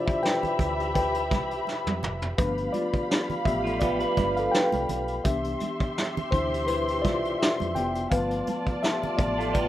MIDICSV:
0, 0, Header, 1, 7, 480
1, 0, Start_track
1, 0, Key_signature, 0, "major"
1, 0, Tempo, 715990
1, 1599, Time_signature, 4, 2, 24, 8
1, 6492, End_track
2, 0, Start_track
2, 0, Title_t, "String section"
2, 0, Program_c, 0, 48
2, 0, Note_on_c, 0, 67, 84
2, 0, Note_on_c, 0, 76, 91
2, 0, Note_on_c, 0, 83, 97
2, 1573, Note_off_c, 0, 76, 0
2, 1574, Note_off_c, 0, 67, 0
2, 1575, Note_off_c, 0, 83, 0
2, 1594, Note_on_c, 0, 83, 97
2, 1596, Note_on_c, 0, 67, 78
2, 1597, Note_on_c, 0, 77, 87
2, 3490, Note_off_c, 0, 83, 0
2, 3491, Note_off_c, 0, 67, 0
2, 3491, Note_off_c, 0, 77, 0
2, 3522, Note_on_c, 0, 84, 103
2, 3526, Note_on_c, 0, 67, 89
2, 3526, Note_on_c, 0, 76, 85
2, 5414, Note_off_c, 0, 84, 0
2, 5416, Note_off_c, 0, 67, 0
2, 5416, Note_off_c, 0, 76, 0
2, 5444, Note_on_c, 0, 74, 101
2, 5446, Note_on_c, 0, 81, 103
2, 5448, Note_on_c, 0, 65, 92
2, 6492, Note_off_c, 0, 65, 0
2, 6492, Note_off_c, 0, 74, 0
2, 6492, Note_off_c, 0, 81, 0
2, 6492, End_track
3, 0, Start_track
3, 0, Title_t, "Reed electric piano"
3, 0, Program_c, 1, 4
3, 0, Control_c, 1, 64, 127
3, 0, Note_on_c, 1, 47, 48
3, 0, Note_on_c, 1, 52, 50
3, 0, Note_on_c, 1, 62, 58
3, 0, Note_on_c, 1, 64, 71
3, 0, Note_on_c, 1, 65, 80
3, 0, Note_on_c, 1, 72, 78
3, 0, Note_on_c, 1, 74, 104
3, 40, Note_on_c, 1, 76, 82
3, 47, Note_on_c, 1, 67, 66
3, 92, Note_off_c, 1, 76, 0
3, 97, Note_off_c, 1, 67, 0
3, 153, Note_on_c, 1, 79, 113
3, 158, Note_on_c, 1, 71, 86
3, 612, Note_off_c, 1, 71, 0
3, 625, Note_off_c, 1, 79, 0
3, 633, Note_on_c, 1, 79, 97
3, 643, Note_on_c, 1, 71, 68
3, 1329, Note_off_c, 1, 79, 0
3, 1334, Note_off_c, 1, 71, 0
3, 1595, Note_on_c, 1, 71, 89
3, 1602, Note_on_c, 1, 53, 47
3, 1604, Note_on_c, 1, 57, 47
3, 1608, Control_c, 1, 64, 0
3, 1608, Note_on_c, 1, 59, 57
3, 1609, Note_off_c, 1, 64, 0
3, 1610, Note_off_c, 1, 47, 0
3, 1612, Note_off_c, 1, 62, 0
3, 1612, Note_off_c, 1, 65, 0
3, 1612, Note_on_c, 1, 62, 60
3, 1613, Note_off_c, 1, 72, 0
3, 1614, Note_off_c, 1, 52, 0
3, 1614, Note_off_c, 1, 74, 0
3, 1705, Control_c, 1, 64, 127
3, 1827, Note_on_c, 1, 74, 105
3, 1829, Note_off_c, 1, 62, 0
3, 1840, Note_on_c, 1, 65, 79
3, 1844, Note_off_c, 1, 71, 0
3, 2293, Note_off_c, 1, 53, 0
3, 2293, Note_off_c, 1, 65, 0
3, 2294, Note_off_c, 1, 57, 0
3, 2297, Note_off_c, 1, 59, 0
3, 2313, Note_on_c, 1, 76, 88
3, 2317, Note_on_c, 1, 53, 43
3, 2323, Note_on_c, 1, 57, 41
3, 2325, Note_on_c, 1, 67, 68
3, 2326, Note_on_c, 1, 59, 57
3, 2328, Note_off_c, 1, 74, 0
3, 2534, Note_off_c, 1, 53, 0
3, 2537, Note_off_c, 1, 57, 0
3, 2539, Note_off_c, 1, 59, 0
3, 2539, Note_off_c, 1, 76, 0
3, 2544, Note_on_c, 1, 74, 97
3, 2546, Note_off_c, 1, 67, 0
3, 2558, Note_on_c, 1, 65, 71
3, 2902, Note_off_c, 1, 65, 0
3, 2927, Note_on_c, 1, 77, 107
3, 2932, Note_off_c, 1, 74, 0
3, 2943, Note_on_c, 1, 69, 77
3, 3027, Note_on_c, 1, 79, 109
3, 3039, Note_off_c, 1, 69, 0
3, 3042, Note_off_c, 1, 77, 0
3, 3047, Note_on_c, 1, 71, 90
3, 3376, Note_off_c, 1, 79, 0
3, 3387, Note_off_c, 1, 71, 0
3, 3515, Note_on_c, 1, 76, 97
3, 3517, Note_on_c, 1, 52, 54
3, 3522, Note_on_c, 1, 59, 48
3, 3523, Note_on_c, 1, 67, 82
3, 3524, Note_on_c, 1, 62, 63
3, 3528, Control_c, 1, 64, 0
3, 3632, Control_c, 1, 64, 127
3, 4211, Note_off_c, 1, 52, 0
3, 4214, Note_off_c, 1, 59, 0
3, 4214, Note_off_c, 1, 67, 0
3, 4215, Note_off_c, 1, 62, 0
3, 4230, Note_on_c, 1, 72, 84
3, 4238, Note_on_c, 1, 47, 41
3, 4239, Note_on_c, 1, 52, 41
3, 4245, Note_on_c, 1, 62, 51
3, 4246, Note_on_c, 1, 64, 64
3, 4259, Note_off_c, 1, 76, 0
3, 4454, Note_off_c, 1, 47, 0
3, 4455, Note_off_c, 1, 52, 0
3, 4458, Note_off_c, 1, 62, 0
3, 4466, Note_off_c, 1, 64, 0
3, 4469, Note_on_c, 1, 71, 91
3, 4482, Note_off_c, 1, 72, 0
3, 4484, Note_on_c, 1, 64, 75
3, 4697, Note_off_c, 1, 71, 0
3, 4704, Note_on_c, 1, 74, 98
3, 4705, Note_off_c, 1, 64, 0
3, 4719, Note_on_c, 1, 65, 83
3, 4942, Note_off_c, 1, 65, 0
3, 4952, Note_on_c, 1, 76, 98
3, 4959, Note_off_c, 1, 74, 0
3, 4967, Note_on_c, 1, 67, 74
3, 5187, Note_off_c, 1, 67, 0
3, 5196, Note_on_c, 1, 79, 97
3, 5203, Note_off_c, 1, 76, 0
3, 5213, Note_on_c, 1, 59, 74
3, 5430, Note_off_c, 1, 59, 0
3, 5432, Note_on_c, 1, 77, 98
3, 5435, Note_on_c, 1, 53, 57
3, 5438, Note_on_c, 1, 57, 47
3, 5445, Note_off_c, 1, 79, 0
3, 5445, Note_on_c, 1, 59, 63
3, 5446, Note_on_c, 1, 71, 81
3, 5448, Control_c, 1, 64, 0
3, 5546, Control_c, 1, 64, 127
3, 5763, Note_off_c, 1, 53, 0
3, 5765, Note_off_c, 1, 57, 0
3, 5769, Note_off_c, 1, 59, 0
3, 5889, Note_off_c, 1, 77, 0
3, 5896, Note_off_c, 1, 71, 0
3, 5917, Note_on_c, 1, 76, 98
3, 5932, Note_on_c, 1, 67, 74
3, 6141, Note_off_c, 1, 76, 0
3, 6144, Note_on_c, 1, 74, 91
3, 6149, Note_off_c, 1, 67, 0
3, 6151, Note_on_c, 1, 53, 46
3, 6153, Note_on_c, 1, 57, 48
3, 6154, Note_on_c, 1, 59, 58
3, 6159, Note_on_c, 1, 65, 61
3, 6370, Note_off_c, 1, 53, 0
3, 6372, Note_off_c, 1, 57, 0
3, 6372, Note_off_c, 1, 59, 0
3, 6382, Note_off_c, 1, 65, 0
3, 6387, Note_off_c, 1, 74, 0
3, 6395, Note_on_c, 1, 74, 88
3, 6406, Note_on_c, 1, 65, 70
3, 6492, Note_off_c, 1, 65, 0
3, 6492, Note_off_c, 1, 74, 0
3, 6492, End_track
4, 0, Start_track
4, 0, Title_t, "Clean electric guitar"
4, 0, Program_c, 2, 27
4, 2439, Note_on_c, 2, 65, 67
4, 2448, Note_on_c, 2, 57, 57
4, 2548, Note_off_c, 2, 65, 0
4, 2553, Note_off_c, 2, 57, 0
4, 2560, Note_on_c, 2, 59, 72
4, 2561, Note_on_c, 2, 67, 68
4, 2682, Note_off_c, 2, 67, 0
4, 2683, Note_off_c, 2, 59, 0
4, 2685, Note_on_c, 2, 71, 76
4, 2689, Note_on_c, 2, 62, 59
4, 3380, Note_off_c, 2, 71, 0
4, 3382, Note_off_c, 2, 62, 0
4, 6285, Note_on_c, 2, 65, 70
4, 6290, Note_on_c, 2, 57, 59
4, 6386, Note_off_c, 2, 65, 0
4, 6389, Note_on_c, 2, 59, 75
4, 6391, Note_on_c, 2, 67, 68
4, 6394, Note_off_c, 2, 57, 0
4, 6492, Note_off_c, 2, 59, 0
4, 6492, Note_off_c, 2, 67, 0
4, 6492, End_track
5, 0, Start_track
5, 0, Title_t, "Fingered electric bass"
5, 0, Program_c, 3, 33
5, 398, Note_on_c, 3, 38, 85
5, 879, Note_off_c, 3, 38, 0
5, 879, Note_on_c, 3, 36, 97
5, 1072, Note_off_c, 3, 36, 0
5, 1254, Note_on_c, 3, 41, 80
5, 1340, Note_off_c, 3, 41, 0
5, 1364, Note_on_c, 3, 29, 67
5, 1555, Note_off_c, 3, 29, 0
5, 1600, Note_on_c, 3, 31, 109
5, 1792, Note_off_c, 3, 31, 0
5, 2318, Note_on_c, 3, 33, 83
5, 2704, Note_off_c, 3, 33, 0
5, 2797, Note_on_c, 3, 31, 90
5, 2991, Note_off_c, 3, 31, 0
5, 3172, Note_on_c, 3, 36, 89
5, 3259, Note_off_c, 3, 36, 0
5, 3283, Note_on_c, 3, 35, 73
5, 3474, Note_off_c, 3, 35, 0
5, 3522, Note_on_c, 3, 36, 93
5, 3714, Note_off_c, 3, 36, 0
5, 4238, Note_on_c, 3, 38, 89
5, 4728, Note_off_c, 3, 38, 0
5, 4728, Note_on_c, 3, 36, 91
5, 4917, Note_off_c, 3, 36, 0
5, 5100, Note_on_c, 3, 41, 95
5, 5184, Note_off_c, 3, 41, 0
5, 5216, Note_on_c, 3, 29, 70
5, 5402, Note_off_c, 3, 29, 0
5, 5444, Note_on_c, 3, 31, 102
5, 5635, Note_off_c, 3, 31, 0
5, 6160, Note_on_c, 3, 33, 87
5, 6492, Note_off_c, 3, 33, 0
5, 6492, End_track
6, 0, Start_track
6, 0, Title_t, "Muted fingered electric bass strokes"
6, 292, Note_on_c, 9, 29, 52
6, 359, Note_off_c, 9, 29, 0
6, 2209, Note_on_c, 9, 29, 48
6, 2276, Note_off_c, 9, 29, 0
6, 4137, Note_on_c, 9, 29, 50
6, 4204, Note_off_c, 9, 29, 0
6, 6054, Note_on_c, 9, 29, 45
6, 6121, Note_off_c, 9, 29, 0
6, 6492, End_track
7, 0, Start_track
7, 0, Title_t, "Drums"
7, 51, Note_on_c, 9, 36, 89
7, 60, Note_on_c, 9, 42, 46
7, 118, Note_off_c, 9, 36, 0
7, 127, Note_off_c, 9, 42, 0
7, 156, Note_on_c, 9, 62, 31
7, 169, Note_on_c, 9, 38, 96
7, 223, Note_off_c, 9, 62, 0
7, 236, Note_off_c, 9, 38, 0
7, 290, Note_on_c, 9, 64, 73
7, 296, Note_on_c, 9, 42, 44
7, 357, Note_off_c, 9, 64, 0
7, 363, Note_off_c, 9, 42, 0
7, 396, Note_on_c, 9, 36, 82
7, 397, Note_on_c, 9, 62, 31
7, 397, Note_on_c, 9, 64, 65
7, 402, Note_on_c, 9, 42, 61
7, 463, Note_off_c, 9, 36, 0
7, 464, Note_off_c, 9, 62, 0
7, 464, Note_off_c, 9, 64, 0
7, 469, Note_off_c, 9, 42, 0
7, 535, Note_on_c, 9, 42, 57
7, 602, Note_off_c, 9, 42, 0
7, 635, Note_on_c, 9, 42, 100
7, 640, Note_on_c, 9, 36, 86
7, 645, Note_on_c, 9, 62, 29
7, 702, Note_off_c, 9, 42, 0
7, 707, Note_off_c, 9, 36, 0
7, 712, Note_off_c, 9, 62, 0
7, 768, Note_on_c, 9, 42, 59
7, 835, Note_off_c, 9, 42, 0
7, 880, Note_on_c, 9, 42, 73
7, 881, Note_on_c, 9, 36, 93
7, 883, Note_on_c, 9, 63, 75
7, 888, Note_on_c, 9, 38, 34
7, 947, Note_off_c, 9, 42, 0
7, 948, Note_off_c, 9, 36, 0
7, 950, Note_off_c, 9, 63, 0
7, 955, Note_off_c, 9, 38, 0
7, 1011, Note_on_c, 9, 42, 44
7, 1078, Note_off_c, 9, 42, 0
7, 1121, Note_on_c, 9, 62, 32
7, 1130, Note_on_c, 9, 38, 57
7, 1188, Note_off_c, 9, 62, 0
7, 1197, Note_off_c, 9, 38, 0
7, 1252, Note_on_c, 9, 63, 69
7, 1253, Note_on_c, 9, 48, 70
7, 1319, Note_off_c, 9, 63, 0
7, 1320, Note_off_c, 9, 48, 0
7, 1360, Note_on_c, 9, 62, 36
7, 1360, Note_on_c, 9, 64, 79
7, 1365, Note_on_c, 9, 45, 98
7, 1427, Note_off_c, 9, 62, 0
7, 1427, Note_off_c, 9, 64, 0
7, 1432, Note_off_c, 9, 45, 0
7, 1488, Note_on_c, 9, 43, 93
7, 1555, Note_off_c, 9, 43, 0
7, 1596, Note_on_c, 9, 42, 97
7, 1598, Note_on_c, 9, 36, 120
7, 1663, Note_off_c, 9, 42, 0
7, 1665, Note_off_c, 9, 36, 0
7, 1727, Note_on_c, 9, 42, 54
7, 1794, Note_off_c, 9, 42, 0
7, 1834, Note_on_c, 9, 42, 74
7, 1837, Note_on_c, 9, 62, 33
7, 1837, Note_on_c, 9, 63, 60
7, 1901, Note_off_c, 9, 42, 0
7, 1904, Note_off_c, 9, 62, 0
7, 1904, Note_off_c, 9, 63, 0
7, 1968, Note_on_c, 9, 36, 77
7, 1973, Note_on_c, 9, 42, 47
7, 2035, Note_off_c, 9, 36, 0
7, 2040, Note_off_c, 9, 42, 0
7, 2086, Note_on_c, 9, 38, 100
7, 2153, Note_off_c, 9, 38, 0
7, 2211, Note_on_c, 9, 64, 71
7, 2213, Note_on_c, 9, 42, 49
7, 2278, Note_off_c, 9, 64, 0
7, 2280, Note_off_c, 9, 42, 0
7, 2316, Note_on_c, 9, 36, 91
7, 2317, Note_on_c, 9, 64, 60
7, 2326, Note_on_c, 9, 42, 64
7, 2383, Note_off_c, 9, 36, 0
7, 2384, Note_off_c, 9, 64, 0
7, 2393, Note_off_c, 9, 42, 0
7, 2455, Note_on_c, 9, 42, 50
7, 2523, Note_off_c, 9, 42, 0
7, 2548, Note_on_c, 9, 42, 85
7, 2558, Note_on_c, 9, 36, 84
7, 2615, Note_off_c, 9, 42, 0
7, 2625, Note_off_c, 9, 36, 0
7, 2681, Note_on_c, 9, 42, 57
7, 2748, Note_off_c, 9, 42, 0
7, 2794, Note_on_c, 9, 42, 75
7, 2798, Note_on_c, 9, 36, 82
7, 2802, Note_on_c, 9, 38, 34
7, 2803, Note_on_c, 9, 62, 36
7, 2803, Note_on_c, 9, 63, 82
7, 2861, Note_off_c, 9, 42, 0
7, 2865, Note_off_c, 9, 36, 0
7, 2869, Note_off_c, 9, 38, 0
7, 2870, Note_off_c, 9, 62, 0
7, 2870, Note_off_c, 9, 63, 0
7, 2929, Note_on_c, 9, 42, 49
7, 2996, Note_off_c, 9, 42, 0
7, 3046, Note_on_c, 9, 38, 95
7, 3113, Note_off_c, 9, 38, 0
7, 3167, Note_on_c, 9, 63, 74
7, 3172, Note_on_c, 9, 42, 53
7, 3234, Note_off_c, 9, 63, 0
7, 3239, Note_off_c, 9, 42, 0
7, 3278, Note_on_c, 9, 42, 86
7, 3279, Note_on_c, 9, 62, 35
7, 3279, Note_on_c, 9, 64, 71
7, 3345, Note_off_c, 9, 42, 0
7, 3346, Note_off_c, 9, 62, 0
7, 3346, Note_off_c, 9, 64, 0
7, 3405, Note_on_c, 9, 42, 51
7, 3472, Note_off_c, 9, 42, 0
7, 3517, Note_on_c, 9, 42, 101
7, 3520, Note_on_c, 9, 36, 106
7, 3527, Note_on_c, 9, 62, 34
7, 3584, Note_off_c, 9, 42, 0
7, 3587, Note_off_c, 9, 36, 0
7, 3594, Note_off_c, 9, 62, 0
7, 3649, Note_on_c, 9, 42, 55
7, 3716, Note_off_c, 9, 42, 0
7, 3754, Note_on_c, 9, 42, 74
7, 3765, Note_on_c, 9, 62, 29
7, 3765, Note_on_c, 9, 63, 61
7, 3821, Note_off_c, 9, 42, 0
7, 3832, Note_off_c, 9, 62, 0
7, 3832, Note_off_c, 9, 63, 0
7, 3891, Note_on_c, 9, 36, 88
7, 3894, Note_on_c, 9, 42, 44
7, 3958, Note_off_c, 9, 36, 0
7, 3961, Note_off_c, 9, 42, 0
7, 4008, Note_on_c, 9, 38, 90
7, 4075, Note_off_c, 9, 38, 0
7, 4136, Note_on_c, 9, 42, 51
7, 4139, Note_on_c, 9, 64, 78
7, 4203, Note_off_c, 9, 42, 0
7, 4206, Note_off_c, 9, 64, 0
7, 4238, Note_on_c, 9, 36, 90
7, 4240, Note_on_c, 9, 62, 28
7, 4240, Note_on_c, 9, 64, 63
7, 4246, Note_on_c, 9, 42, 67
7, 4305, Note_off_c, 9, 36, 0
7, 4307, Note_off_c, 9, 62, 0
7, 4307, Note_off_c, 9, 64, 0
7, 4313, Note_off_c, 9, 42, 0
7, 4383, Note_on_c, 9, 42, 56
7, 4450, Note_off_c, 9, 42, 0
7, 4475, Note_on_c, 9, 42, 89
7, 4489, Note_on_c, 9, 62, 32
7, 4542, Note_off_c, 9, 42, 0
7, 4556, Note_off_c, 9, 62, 0
7, 4612, Note_on_c, 9, 42, 59
7, 4679, Note_off_c, 9, 42, 0
7, 4724, Note_on_c, 9, 36, 84
7, 4725, Note_on_c, 9, 62, 34
7, 4725, Note_on_c, 9, 63, 80
7, 4726, Note_on_c, 9, 42, 77
7, 4734, Note_on_c, 9, 38, 34
7, 4791, Note_off_c, 9, 36, 0
7, 4792, Note_off_c, 9, 62, 0
7, 4792, Note_off_c, 9, 63, 0
7, 4793, Note_off_c, 9, 42, 0
7, 4801, Note_off_c, 9, 38, 0
7, 4860, Note_on_c, 9, 42, 49
7, 4927, Note_off_c, 9, 42, 0
7, 4976, Note_on_c, 9, 38, 105
7, 5043, Note_off_c, 9, 38, 0
7, 5095, Note_on_c, 9, 63, 71
7, 5102, Note_on_c, 9, 42, 54
7, 5162, Note_off_c, 9, 63, 0
7, 5169, Note_off_c, 9, 42, 0
7, 5202, Note_on_c, 9, 62, 33
7, 5202, Note_on_c, 9, 64, 75
7, 5204, Note_on_c, 9, 42, 75
7, 5269, Note_off_c, 9, 62, 0
7, 5269, Note_off_c, 9, 64, 0
7, 5271, Note_off_c, 9, 42, 0
7, 5330, Note_on_c, 9, 42, 57
7, 5397, Note_off_c, 9, 42, 0
7, 5438, Note_on_c, 9, 42, 101
7, 5441, Note_on_c, 9, 36, 100
7, 5443, Note_on_c, 9, 62, 29
7, 5506, Note_off_c, 9, 42, 0
7, 5508, Note_off_c, 9, 36, 0
7, 5510, Note_off_c, 9, 62, 0
7, 5569, Note_on_c, 9, 42, 53
7, 5636, Note_off_c, 9, 42, 0
7, 5678, Note_on_c, 9, 42, 72
7, 5684, Note_on_c, 9, 62, 31
7, 5684, Note_on_c, 9, 63, 68
7, 5745, Note_off_c, 9, 42, 0
7, 5751, Note_off_c, 9, 62, 0
7, 5751, Note_off_c, 9, 63, 0
7, 5810, Note_on_c, 9, 36, 78
7, 5812, Note_on_c, 9, 42, 47
7, 5877, Note_off_c, 9, 36, 0
7, 5879, Note_off_c, 9, 42, 0
7, 5923, Note_on_c, 9, 62, 34
7, 5925, Note_on_c, 9, 38, 101
7, 5990, Note_off_c, 9, 62, 0
7, 5993, Note_off_c, 9, 38, 0
7, 6056, Note_on_c, 9, 42, 51
7, 6056, Note_on_c, 9, 64, 70
7, 6123, Note_off_c, 9, 42, 0
7, 6124, Note_off_c, 9, 64, 0
7, 6158, Note_on_c, 9, 36, 97
7, 6160, Note_on_c, 9, 62, 32
7, 6160, Note_on_c, 9, 64, 65
7, 6164, Note_on_c, 9, 42, 66
7, 6225, Note_off_c, 9, 36, 0
7, 6227, Note_off_c, 9, 62, 0
7, 6227, Note_off_c, 9, 64, 0
7, 6231, Note_off_c, 9, 42, 0
7, 6303, Note_on_c, 9, 42, 54
7, 6370, Note_off_c, 9, 42, 0
7, 6397, Note_on_c, 9, 42, 93
7, 6400, Note_on_c, 9, 62, 33
7, 6402, Note_on_c, 9, 36, 88
7, 6464, Note_off_c, 9, 42, 0
7, 6467, Note_off_c, 9, 62, 0
7, 6469, Note_off_c, 9, 36, 0
7, 6492, End_track
0, 0, End_of_file